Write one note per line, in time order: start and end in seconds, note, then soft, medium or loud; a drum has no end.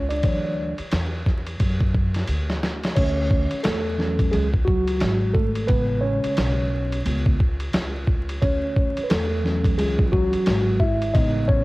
0.00 0.21 C#2 medium
0.09 0.76 D4 medium
0.09 0.74 D5 medium
0.09 ride medium
0.23 0.76 D2 medium
0.23 0.72 E3 medium
0.23 0.72 F#3 soft
0.23 0.72 C#5 medium
0.23 kick loud
0.23 ride medium
0.78 muted upright bass stroke soft
0.78 ride soft
0.92 1.57 E2 loud
0.92 snare loud
0.92 hi-hat pedal medium
0.92 ride medium
1.26 kick medium
1.26 snare soft
1.47 ride medium
1.60 2.25 F#2 medium
1.60 kick medium
1.60 ride medium
1.81 kick medium
1.95 kick medium
2.15 snare soft
2.15 ride medium
2.28 2.93 D2 medium
2.28 hi-hat pedal soft
2.28 ride medium
2.50 snare medium
2.63 snare medium
2.83 snare medium
2.83 ride medium
2.95 3.49 D2 loud
2.95 3.61 C#4 medium
2.95 3.60 C#5 medium
2.95 kick medium
2.95 crash medium
2.95 ride medium
3.31 kick medium
3.51 muted upright bass stroke soft
3.51 ride soft
3.63 4.30 E2 medium
3.63 4.29 A3 medium
3.63 4.34 A4 medium
3.63 snare loud
3.63 hi-hat pedal medium
3.63 ride medium
3.98 4.47 E3 medium
3.98 4.47 F#3 soft
3.98 4.47 C#4 medium
3.98 snare soft
4.19 kick medium
4.19 ride medium
4.31 4.98 C#2 medium
4.31 4.49 G#3 medium
4.31 4.47 G#4 medium
4.31 ride medium
4.54 kick medium
4.65 5.31 F#3 medium
4.65 5.36 F#4 loud
4.65 kick medium
4.87 ride medium
5.00 5.66 G#1 medium
5.00 snare medium
5.00 hi-hat pedal soft
5.00 ride medium
5.33 5.67 A3 medium
5.33 5.66 A4 medium
5.33 kick medium
5.55 ride medium
5.68 6.22 A1 medium
5.68 6.67 C#3 soft
5.68 6.67 G#3 soft
5.68 6.01 B3 medium
5.68 6.04 B4 medium
5.68 kick loud
5.68 ride medium
6.01 7.02 C#4 medium
6.01 7.01 C#5 medium
6.24 muted upright bass stroke soft
6.24 ride medium
6.37 7.03 B1 medium
6.37 snare loud
6.37 hi-hat pedal medium
6.37 ride medium
6.92 ride medium
7.05 7.71 C#2 medium
7.05 7.36 C#3 soft
7.05 7.36 G#3 soft
7.05 7.36 B3 soft
7.05 ride medium
7.26 kick medium
7.40 kick medium
7.60 ride medium
7.73 8.39 C#2 medium
7.73 snare loud
7.73 hi-hat pedal soft
7.73 ride medium
8.07 kick medium
8.29 ride medium
8.42 8.95 D2 medium
8.42 9.01 C#4 medium
8.42 9.07 C#5 medium
8.42 kick loud
8.42 ride medium
8.76 kick medium
8.97 muted upright bass stroke medium
8.97 ride medium
9.04 9.10 B4 medium
9.10 9.75 E2 loud
9.10 9.75 A3 medium
9.10 9.74 A4 medium
9.10 snare loud
9.10 hi-hat pedal medium
9.10 ride medium
9.44 10.42 E3 medium
9.44 10.13 F#3 medium
9.44 10.43 C#4 medium
9.44 snare soft
9.65 kick medium
9.65 ride medium
9.78 10.31 C#2 medium
9.78 10.06 G#3 medium
9.78 10.05 G#4 medium
9.78 ride medium
9.99 kick medium
10.05 10.12 F4 medium
10.12 10.77 F#3 medium
10.12 10.83 F#4 medium
10.12 kick medium
10.33 muted upright bass stroke soft
10.33 ride medium
10.46 11.12 G#1 medium
10.46 snare loud
10.46 hi-hat pedal medium
10.46 ride medium
10.80 11.13 E4 medium
10.80 11.15 E5 medium
10.80 kick medium
11.02 ride soft
11.14 11.64 A1 medium
11.14 11.63 C#3 medium
11.14 11.63 G#3 soft
11.14 11.64 B3 medium
11.14 11.47 D#4 medium
11.14 11.49 D#5 medium
11.14 kick loud
11.14 ride medium
11.48 11.64 C#4 medium
11.48 11.64 C#5 medium
11.48 kick medium